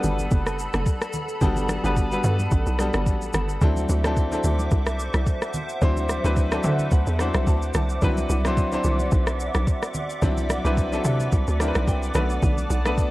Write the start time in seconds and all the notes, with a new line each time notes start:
Already playing: G3 B3 D4 F#4 A4 B4 F#5 A5 B5
0.03 G1, low conga, shaker
0.19 high conga, shaker
0.31 F#1, kick, shaker
0.47 cross-stick, shaker
0.59 shaker
0.74 F#1, cross-stick, high conga, shaker
0.86 kick, shaker
1.02 cross-stick, shaker
1.13 low conga, shaker
1.29 shaker
1.41 G1 G3 B3 D4 F#4 A4, kick, low conga, shaker
1.57 high conga, shaker
1.69 cross-stick, high conga, shaker
1.84 G1 G3 B3 D4 F#4 B4, high conga, shaker
1.97 kick, shaker
2.12 G3 B3 D4 F#4 B4, shaker
2.24 G2, low conga, shaker
2.39 high conga, shaker
2.51 A1, kick, shaker
2.66 B1, shaker
2.79 G3 B3 D4 F#4 A4, cross-stick, shaker
2.94 G1, cross-stick, high conga, shaker
3.06 A1, kick, shaker
3.22 shaker
3.33 G1, cross-stick, low conga, shaker
3.49 shaker
3.61 D2 F#3 C4 D4 E4 A4 C5 E5 D6, kick, low conga, shaker
3.77 high conga, shaker
3.89 D2, high conga, shaker
4.04 F#3 C4 D4 E4 A4, cross-stick, high conga, shaker
4.17 kick, shaker
4.32 F#3 C4 D4 E4 A4, shaker
4.44 D2, low conga, shaker
4.59 high conga, shaker
4.71 C2, kick, shaker
4.87 cross-stick, shaker
5.00 shaker
5.14 C2, cross-stick, high conga, shaker
5.27 kick, shaker
5.42 cross-stick, shaker
5.54 low conga, shaker
5.69 shaker
5.82 D2 F#3 C4 D4 E4 C5, kick, low conga, shaker
5.97 high conga, shaker
6.09 cross-stick, high conga, shaker
6.24 D2 F#3 C4 D4 E4 B4, high conga, shaker
6.37 kick, shaker
6.52 F#3 C4 D4 E4 A4, cross-stick, shaker
6.64 D3 E5, low conga, shaker
6.79 high conga, shaker
6.91 D2 F#5, kick, shaker
7.07 E2, shaker
7.19 F#3 C4 D4 E4 C5 F#5, cross-stick, shaker
7.34 C2, cross-stick, high conga, shaker
7.47 D2 A5, kick, shaker
7.62 shaker
7.74 C2 A5, cross-stick, low conga, shaker
7.89 shaker
8.02 C2 F#3 C4 D4 E4 B4 D5 E5, kick, low conga, shaker
8.17 high conga, shaker
8.29 C2, high conga, shaker
8.45 F#3 C4 D4 E4 C5, cross-stick, high conga, shaker
8.57 kick, shaker
8.72 F#3 C4 D4 E4 C5, shaker
8.84 C2, low conga, shaker
9.00 high conga, shaker
9.12 B1, kick, shaker
9.27 cross-stick, shaker
9.40 shaker
9.54 B1, cross-stick, high conga, shaker
9.67 kick, shaker
9.82 cross-stick, shaker
9.94 low conga, shaker
10.10 shaker
10.22 C2 F#3 C4 D4 E4 D5, kick, low conga, shaker
10.37 high conga, shaker
10.50 cross-stick, high conga, shaker
10.64 C2 F#3 C4 D4 E4 B4, high conga, shaker
10.77 kick, shaker
10.92 F#3 C4 D4 E4 A4, shaker
11.04 C3, low conga, shaker
11.20 high conga, shaker
11.32 C2, kick, shaker
11.47 D2, shaker
11.59 F#3 C4 D4 E4 A#4, cross-stick, shaker
11.68 B4
11.75 B1, cross-stick, high conga, shaker
11.87 C2 G5, kick, shaker
12.03 shaker
12.14 B1 A3 B3 C#4 F#4 B4 D5 A5, cross-stick, low conga, shaker
12.22 D4
12.30 shaker
12.43 B1, kick, low conga, shaker
12.58 high conga, shaker
12.70 B1, high conga, shaker
12.85 A3 B3 D4 F#4 B4, cross-stick, high conga, shaker
12.98 kick, shaker